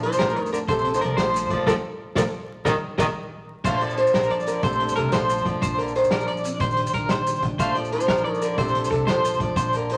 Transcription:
Already playing: A#1 A#2 D4 A4
0.03 F3 C5, closed hi-hat
0.13 maracas
0.19 A#1 A3 A#4, snare, closed hi-hat
0.30 maracas
0.35 F2, muted clean electric guitar stroke, closed hi-hat
0.46 maracas
0.52 D3 A4 A#4, closed hi-hat, maracas
0.68 A#1 A#2 C3 A4 C5, muted clean electric guitar stroke, kick, closed hi-hat, maracas
0.79 maracas
0.84 C4, closed hi-hat
0.93 D#3 D4 C5, maracas
1.01 C2 F3 A#4 D5, closed hi-hat
1.17 A#1 F3 A3 C5, snare, closed hi-hat, maracas
1.33 A#2, closed hi-hat, maracas
1.50 A#1 F3 A4 D5, kick, closed hi-hat
1.66 A#1 F3 A3 A#3 A4 A#4 D5, kick, snare, maracas
2.15 A#1 F3 A3 A#3 A4 A#4 D5, kick, snare, maracas
2.65 A#1 D#3 G3 A#3 A#4 D5 D#5, kick, snare, maracas
2.98 A#1 D#3 G3 A#3 A#4 D5 D#5, kick, snare, maracas
3.64 A#1 A#2 A3 D4 C5 F5, kick, crash, maracas
3.81 F3 A4 D5, closed hi-hat
3.90 maracas
3.97 F3 D4 C5, closed hi-hat
4.07 maracas
4.14 A#1 F3 A#4, snare, closed hi-hat
4.23 maracas
4.30 A4 D5, closed hi-hat
4.40 maracas
4.46 D3 A#4, muted clean electric guitar stroke, closed hi-hat, maracas
4.63 A#1 A#2 C3 A3 D4 A4 C5, muted clean electric guitar stroke, kick, closed hi-hat, maracas
4.73 maracas
4.80 D4, closed hi-hat
4.89 maracas
4.96 C2 C3 D4 A4 A#4, closed hi-hat
5.12 A#1 F3 C5, snare, closed hi-hat, maracas
5.29 A4, closed hi-hat, maracas
5.38 maracas
5.45 A#1 F3 D5, kick, closed hi-hat
5.54 D4
5.62 A#1 A#2 D4 C5, kick, closed hi-hat, maracas
5.78 D3 A4 A#4, closed hi-hat
5.88 maracas
5.95 D#3 D4 C5, closed hi-hat
6.04 maracas
6.11 A#1 F3 A#4 D5, snare, closed hi-hat
6.20 maracas
6.28 D5, muted clean electric guitar stroke, closed hi-hat
6.37 maracas
6.44 C4, closed hi-hat, maracas
6.53 D4
6.60 A#1 A#2 D#3 A#3 D4 G4 C5, kick, closed hi-hat, maracas
6.71 maracas
6.77 G4, closed hi-hat
6.87 maracas
6.93 A#1 D4 A#4, closed hi-hat
7.09 A#1 D#3 C5, snare, closed hi-hat, maracas
7.26 G4, closed hi-hat, maracas
7.35 maracas
7.42 A#1 D4, kick, closed hi-hat
7.59 A#1 A#2 A3 D4 C5 F5, kick, closed hi-hat, maracas
7.75 F3 A4 D5, closed hi-hat
7.85 maracas
7.92 F3 D4 C5, closed hi-hat
8.00 maracas
8.08 A#1 F3 A#4, snare, closed hi-hat
8.17 maracas
8.24 A4 D5, closed hi-hat
8.34 maracas
8.41 D3 D4 A#4, closed hi-hat, maracas
8.58 A#1 A#2 C3 D4 A4 C5, kick, closed hi-hat, maracas
8.68 maracas
8.75 D4, closed hi-hat
8.84 maracas
8.91 C2 C3 D4 A4, muted clean electric guitar stroke, closed hi-hat
9.07 A#1 F3 C5, snare, closed hi-hat, maracas
9.24 A4, closed hi-hat, maracas
9.40 A#1 F3 D4 D5, kick, closed hi-hat
9.56 A#1 A#2 D4 C5, kick, closed hi-hat, maracas
9.73 D3 A4 A#4, closed hi-hat, maracas
9.89 D#3 D4 C5, closed hi-hat

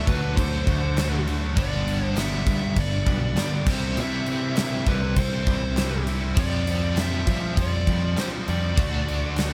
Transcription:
Already playing: D3 A3 D4 F#4
0.06 D2 D3 F#3 A3 D4 F#4 B4, kick, crash
0.21 muted distorted electric guitar stroke
0.37 D2 D3 F#3 A3 D4 C5, kick, crash
0.65 D2 D3 F#3 A3 D4 F#4, kick, crash
0.81 muted distorted electric guitar stroke
0.96 D3 F#3 A3 D4 F#4, snare, clap, crash
1.25 D3 F#3 A3 D4 F#4, crash
1.40 A3 D4 F#4
1.55 G1 G2 D3 G3 B3 D4 G4 D5, kick, crash
1.86 G2 D3 G3 B3 D4, crash
2.01 G3 B3 D4 G4
2.06 C5
2.15 G2 D3 G3 B3 D4 G4, snare, clap, crash
2.19 E5
2.45 G2 D3 G3 B3 D4 G4, kick, crash
2.61 muted distorted electric guitar stroke
2.76 G1 G2 D3 G3 B3 D4 D5, kick, crash
3.05 B1 G2 D3 G3 B3 D4 G4, kick, crash
3.21 muted distorted electric guitar stroke
3.36 G2 D3 G3 B3 D4 G4, snare, clap, crash
3.66 C2 C3 E3 G3 C4 E4 G4 C5, kick, snare, crash
3.81 G3 C4 G4
3.96 C3 E3 G3 C4 E4 G4, crash
4.00 E5
4.26 C3 G3 C4 E4, crash
4.42 G3 C4 G4
4.56 C3 E3 G3 C4 E4 G4, snare, clap, crash
4.86 C2 C3 E3 G3 C4 E4 G4 B4, kick, crash
5.02 muted distorted electric guitar stroke
5.16 C2 C3 G3 C4 E4 C5, kick, crash
5.47 C2 C3 E3 G3 C4 E4 G4, kick, crash
5.62 muted distorted electric guitar stroke
5.76 C3 E3 G3 C4 E4 G4, snare, clap, crash
6.05 C3 E3 G3 C4 E4 G4, crash
6.21 G3 C4 G4
6.36 F2 F3 G3 C4 F4 G4 D5, kick, crash
6.66 F3 G3 C4 F4, crash
6.81 G3 C4 G4
6.96 F3 G3 C4 F4 G4 E5, snare, clap, crash
7.27 F3 G3 C4 F4 G4, kick, crash
7.42 muted distorted electric guitar stroke
7.57 F2 F3 G3 C4 F4 D5, kick, crash
7.87 F2 F3 G3 C4 F4 G4, kick, crash
8.02 muted distorted electric guitar stroke
8.17 F3 G3 C4 F4 G4 C5, snare, clap, crash
8.47 F2 F3 G3 C4 F4 G4 D5, crash
8.61 G3 C4 G4
8.77 D2 D3 A3 D4 F#4, kick, crash
9.07 D3 A3 D4 F#4, crash
9.22 A3 D4 F#4
9.37 D3 A3 D4 F#4, snare, clap, crash

